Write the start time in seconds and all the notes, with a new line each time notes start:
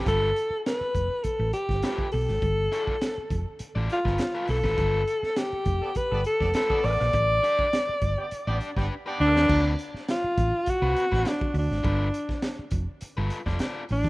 0.05 G1 F4 A4 B4, kick, closed hi-hat
0.36 closed hi-hat
0.50 muted fingered electric bass stroke
0.66 B4, snare, closed hi-hat
0.81 muted fingered electric bass stroke
0.95 F1, kick, closed hi-hat
1.24 A4, muted fingered electric bass stroke, kick, closed hi-hat
1.39 A1
1.53 G4, closed hi-hat
1.69 G1, kick, snare
1.82 F4 A4 B4, snare, closed hi-hat
1.98 kick
2.12 B1 A4, open hi-hat
2.28 G#1, snare
2.42 G1, kick, closed hi-hat
2.72 F4 A4 D5, closed hi-hat
2.87 muted fingered electric bass stroke, kick
3.01 snare, closed hi-hat
3.18 muted fingered electric bass stroke
3.30 F1, kick, closed hi-hat
3.59 muted fingered electric bass stroke, closed hi-hat
3.75 A1 F4 A4 D5
3.89 F4, closed hi-hat
4.05 G1 F4 A4 B4, kick, snare
4.18 snare, closed hi-hat
4.35 F4 A4 B4
4.48 B1 A4, open hi-hat
4.64 G#1 F4 A4 B4, kick, snare
4.78 G1 F4 A4 B4, kick, closed hi-hat
5.07 closed hi-hat
5.23 muted fingered electric bass stroke, snare
5.36 G4, snare, closed hi-hat
5.53 muted fingered electric bass stroke
5.65 F1, kick, closed hi-hat
5.81 B3 A4 D5
5.95 B4, muted fingered electric bass stroke, kick, closed hi-hat
6.11 G1 B3 A4 D5
6.24 A4, closed hi-hat
6.40 F1 B3 A4 D5, kick, snare
6.54 F4 A4 B4, snare, closed hi-hat
6.70 B3 A4 D5, kick
6.84 A1 D5, open hi-hat
7.00 A#1, snare
7.13 A1, kick, closed hi-hat
7.43 D4 G4 D5, closed hi-hat
7.59 muted fingered electric bass stroke, kick
7.73 snare, closed hi-hat
7.89 muted fingered electric bass stroke
8.01 G1, kick, closed hi-hat
8.18 B3 G4 D5
8.31 muted fingered electric bass stroke, closed hi-hat
8.47 A1 B3 D4 G4 D5
8.61 closed hi-hat
8.76 G1 B3 D4 G4 B4 D5, kick, snare
9.06 B3 D4 G4 B4 D5
9.20 D2 D4
9.36 D#2 D4 G4 B4, snare
9.49 D2 C4 F#4 B4, kick, crash
9.79 closed hi-hat
9.94 muted fingered electric bass stroke, snare
10.08 F4, snare, closed hi-hat
10.24 muted fingered electric bass stroke
10.38 A1, kick, closed hi-hat
10.66 F#4, muted fingered electric bass stroke, kick, closed hi-hat
10.82 C2 C4 F#4 B4
10.96 closed hi-hat
11.12 A1 C4 F#4 B4, kick, snare
11.25 D4, snare, closed hi-hat
11.41 kick
11.54 D2, open hi-hat
11.59 D4
11.71 G#1, snare
11.83 G1 F4 A4 B4, kick, closed hi-hat
12.14 closed hi-hat
12.29 muted fingered electric bass stroke, kick, snare
12.42 snare, closed hi-hat
12.59 muted fingered electric bass stroke
12.71 F1, kick, closed hi-hat
13.01 muted fingered electric bass stroke, closed hi-hat
13.17 G1 F4 A4 B4
13.30 closed hi-hat
13.46 F1 F4 A4 D5, kick, snare
13.59 F4 A4 D5, snare, closed hi-hat
13.89 A1 D4, open hi-hat
14.04 D#2, kick, snare